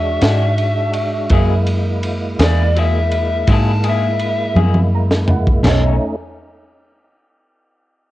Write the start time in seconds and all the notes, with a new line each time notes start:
Already playing: E2 G#3 D4 F#4 G#4 D5 E5
0.21 G#2 G#3 D4 F#4, snare, ride
0.58 ride
0.93 ride
1.30 F#2 F#3 G#3 A#3 E4 G#4 A#4 E5, kick, ride
1.67 ride
2.03 ride
2.39 E2 A#3 E4 G#4, snare, ride
2.44 D5
2.76 F#3 A#3 E4 G#4 E5, ride
3.11 ride
3.47 G#2 F#3 A#3 E4 G#4, kick, ride
3.53 A5
3.84 A#3 E4 G#4, ride
3.89 E5
4.19 ride
4.55 F#2 A#3 E4 G#4, high tom
4.74 high tom
4.95 A#5
5.11 snare
5.28 F#5, floor tom
5.47 kick
5.63 B1 B2 A3 C#4 D#4, snare, floor tom, crash
5.67 A4 C#5 D#5